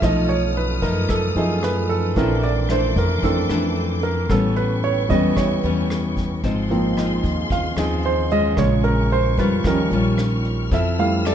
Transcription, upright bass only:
0, 0, Header, 1, 2, 480
1, 0, Start_track
1, 0, Tempo, 534759
1, 21, Time_signature, 4, 2, 24, 8
1, 10186, End_track
2, 0, Start_track
2, 0, Title_t, "Upright bass"
2, 0, Program_c, 0, 32
2, 20, Note_on_c, 0, 35, 85
2, 704, Note_off_c, 0, 35, 0
2, 738, Note_on_c, 0, 42, 86
2, 962, Note_off_c, 0, 42, 0
2, 981, Note_on_c, 0, 42, 74
2, 1203, Note_off_c, 0, 42, 0
2, 1213, Note_on_c, 0, 42, 84
2, 1900, Note_off_c, 0, 42, 0
2, 1943, Note_on_c, 0, 34, 93
2, 2625, Note_off_c, 0, 34, 0
2, 2656, Note_on_c, 0, 41, 101
2, 2881, Note_off_c, 0, 41, 0
2, 2898, Note_on_c, 0, 41, 79
2, 3122, Note_off_c, 0, 41, 0
2, 3136, Note_on_c, 0, 41, 83
2, 3822, Note_off_c, 0, 41, 0
2, 3852, Note_on_c, 0, 33, 94
2, 4540, Note_off_c, 0, 33, 0
2, 4580, Note_on_c, 0, 40, 94
2, 4803, Note_off_c, 0, 40, 0
2, 4813, Note_on_c, 0, 40, 84
2, 5039, Note_off_c, 0, 40, 0
2, 5060, Note_on_c, 0, 40, 79
2, 5744, Note_off_c, 0, 40, 0
2, 5777, Note_on_c, 0, 32, 93
2, 6462, Note_off_c, 0, 32, 0
2, 6493, Note_on_c, 0, 39, 91
2, 6719, Note_off_c, 0, 39, 0
2, 6733, Note_on_c, 0, 39, 74
2, 6959, Note_off_c, 0, 39, 0
2, 6967, Note_on_c, 0, 39, 82
2, 7657, Note_off_c, 0, 39, 0
2, 7694, Note_on_c, 0, 34, 94
2, 8380, Note_off_c, 0, 34, 0
2, 8413, Note_on_c, 0, 41, 92
2, 8639, Note_off_c, 0, 41, 0
2, 8654, Note_on_c, 0, 39, 84
2, 8880, Note_off_c, 0, 39, 0
2, 8891, Note_on_c, 0, 34, 84
2, 9579, Note_off_c, 0, 34, 0
2, 9617, Note_on_c, 0, 41, 95
2, 10186, Note_off_c, 0, 41, 0
2, 10186, End_track
0, 0, End_of_file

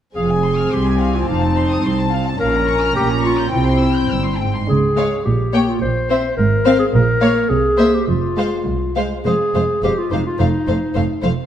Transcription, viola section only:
0, 0, Header, 1, 2, 480
1, 0, Start_track
1, 0, Key_signature, -4, "minor"
1, 0, Tempo, 564972
1, 131, Time_signature, 2, 2, 24, 8
1, 6369, Tempo, 584226
1, 8289, Tempo, 561798
1, 9680, End_track
2, 0, Start_track
2, 0, Title_t, "Viola section"
2, 0, Program_c, 0, 48
2, 126, Note_on_c, 0, 60, 43
2, 2004, Note_off_c, 0, 60, 0
2, 2042, Note_on_c, 0, 61, 51
2, 2981, Note_off_c, 0, 61, 0
2, 2998, Note_on_c, 0, 60, 43
2, 3791, Note_off_c, 0, 60, 0
2, 4218, Note_on_c, 0, 56, 42
2, 4333, Note_off_c, 0, 56, 0
2, 4702, Note_on_c, 0, 58, 41
2, 4814, Note_off_c, 0, 58, 0
2, 5181, Note_on_c, 0, 60, 45
2, 5292, Note_off_c, 0, 60, 0
2, 5659, Note_on_c, 0, 60, 55
2, 5767, Note_off_c, 0, 60, 0
2, 6127, Note_on_c, 0, 58, 51
2, 6241, Note_off_c, 0, 58, 0
2, 6604, Note_on_c, 0, 58, 46
2, 6717, Note_off_c, 0, 58, 0
2, 7087, Note_on_c, 0, 56, 37
2, 7202, Note_off_c, 0, 56, 0
2, 7570, Note_on_c, 0, 56, 35
2, 7686, Note_off_c, 0, 56, 0
2, 7809, Note_on_c, 0, 56, 46
2, 7875, Note_off_c, 0, 56, 0
2, 8053, Note_on_c, 0, 56, 35
2, 8118, Note_off_c, 0, 56, 0
2, 8290, Note_on_c, 0, 56, 44
2, 8358, Note_off_c, 0, 56, 0
2, 8535, Note_on_c, 0, 56, 41
2, 8603, Note_off_c, 0, 56, 0
2, 8771, Note_on_c, 0, 57, 45
2, 8839, Note_off_c, 0, 57, 0
2, 9013, Note_on_c, 0, 57, 39
2, 9081, Note_off_c, 0, 57, 0
2, 9246, Note_on_c, 0, 57, 48
2, 9314, Note_off_c, 0, 57, 0
2, 9491, Note_on_c, 0, 57, 42
2, 9559, Note_off_c, 0, 57, 0
2, 9680, End_track
0, 0, End_of_file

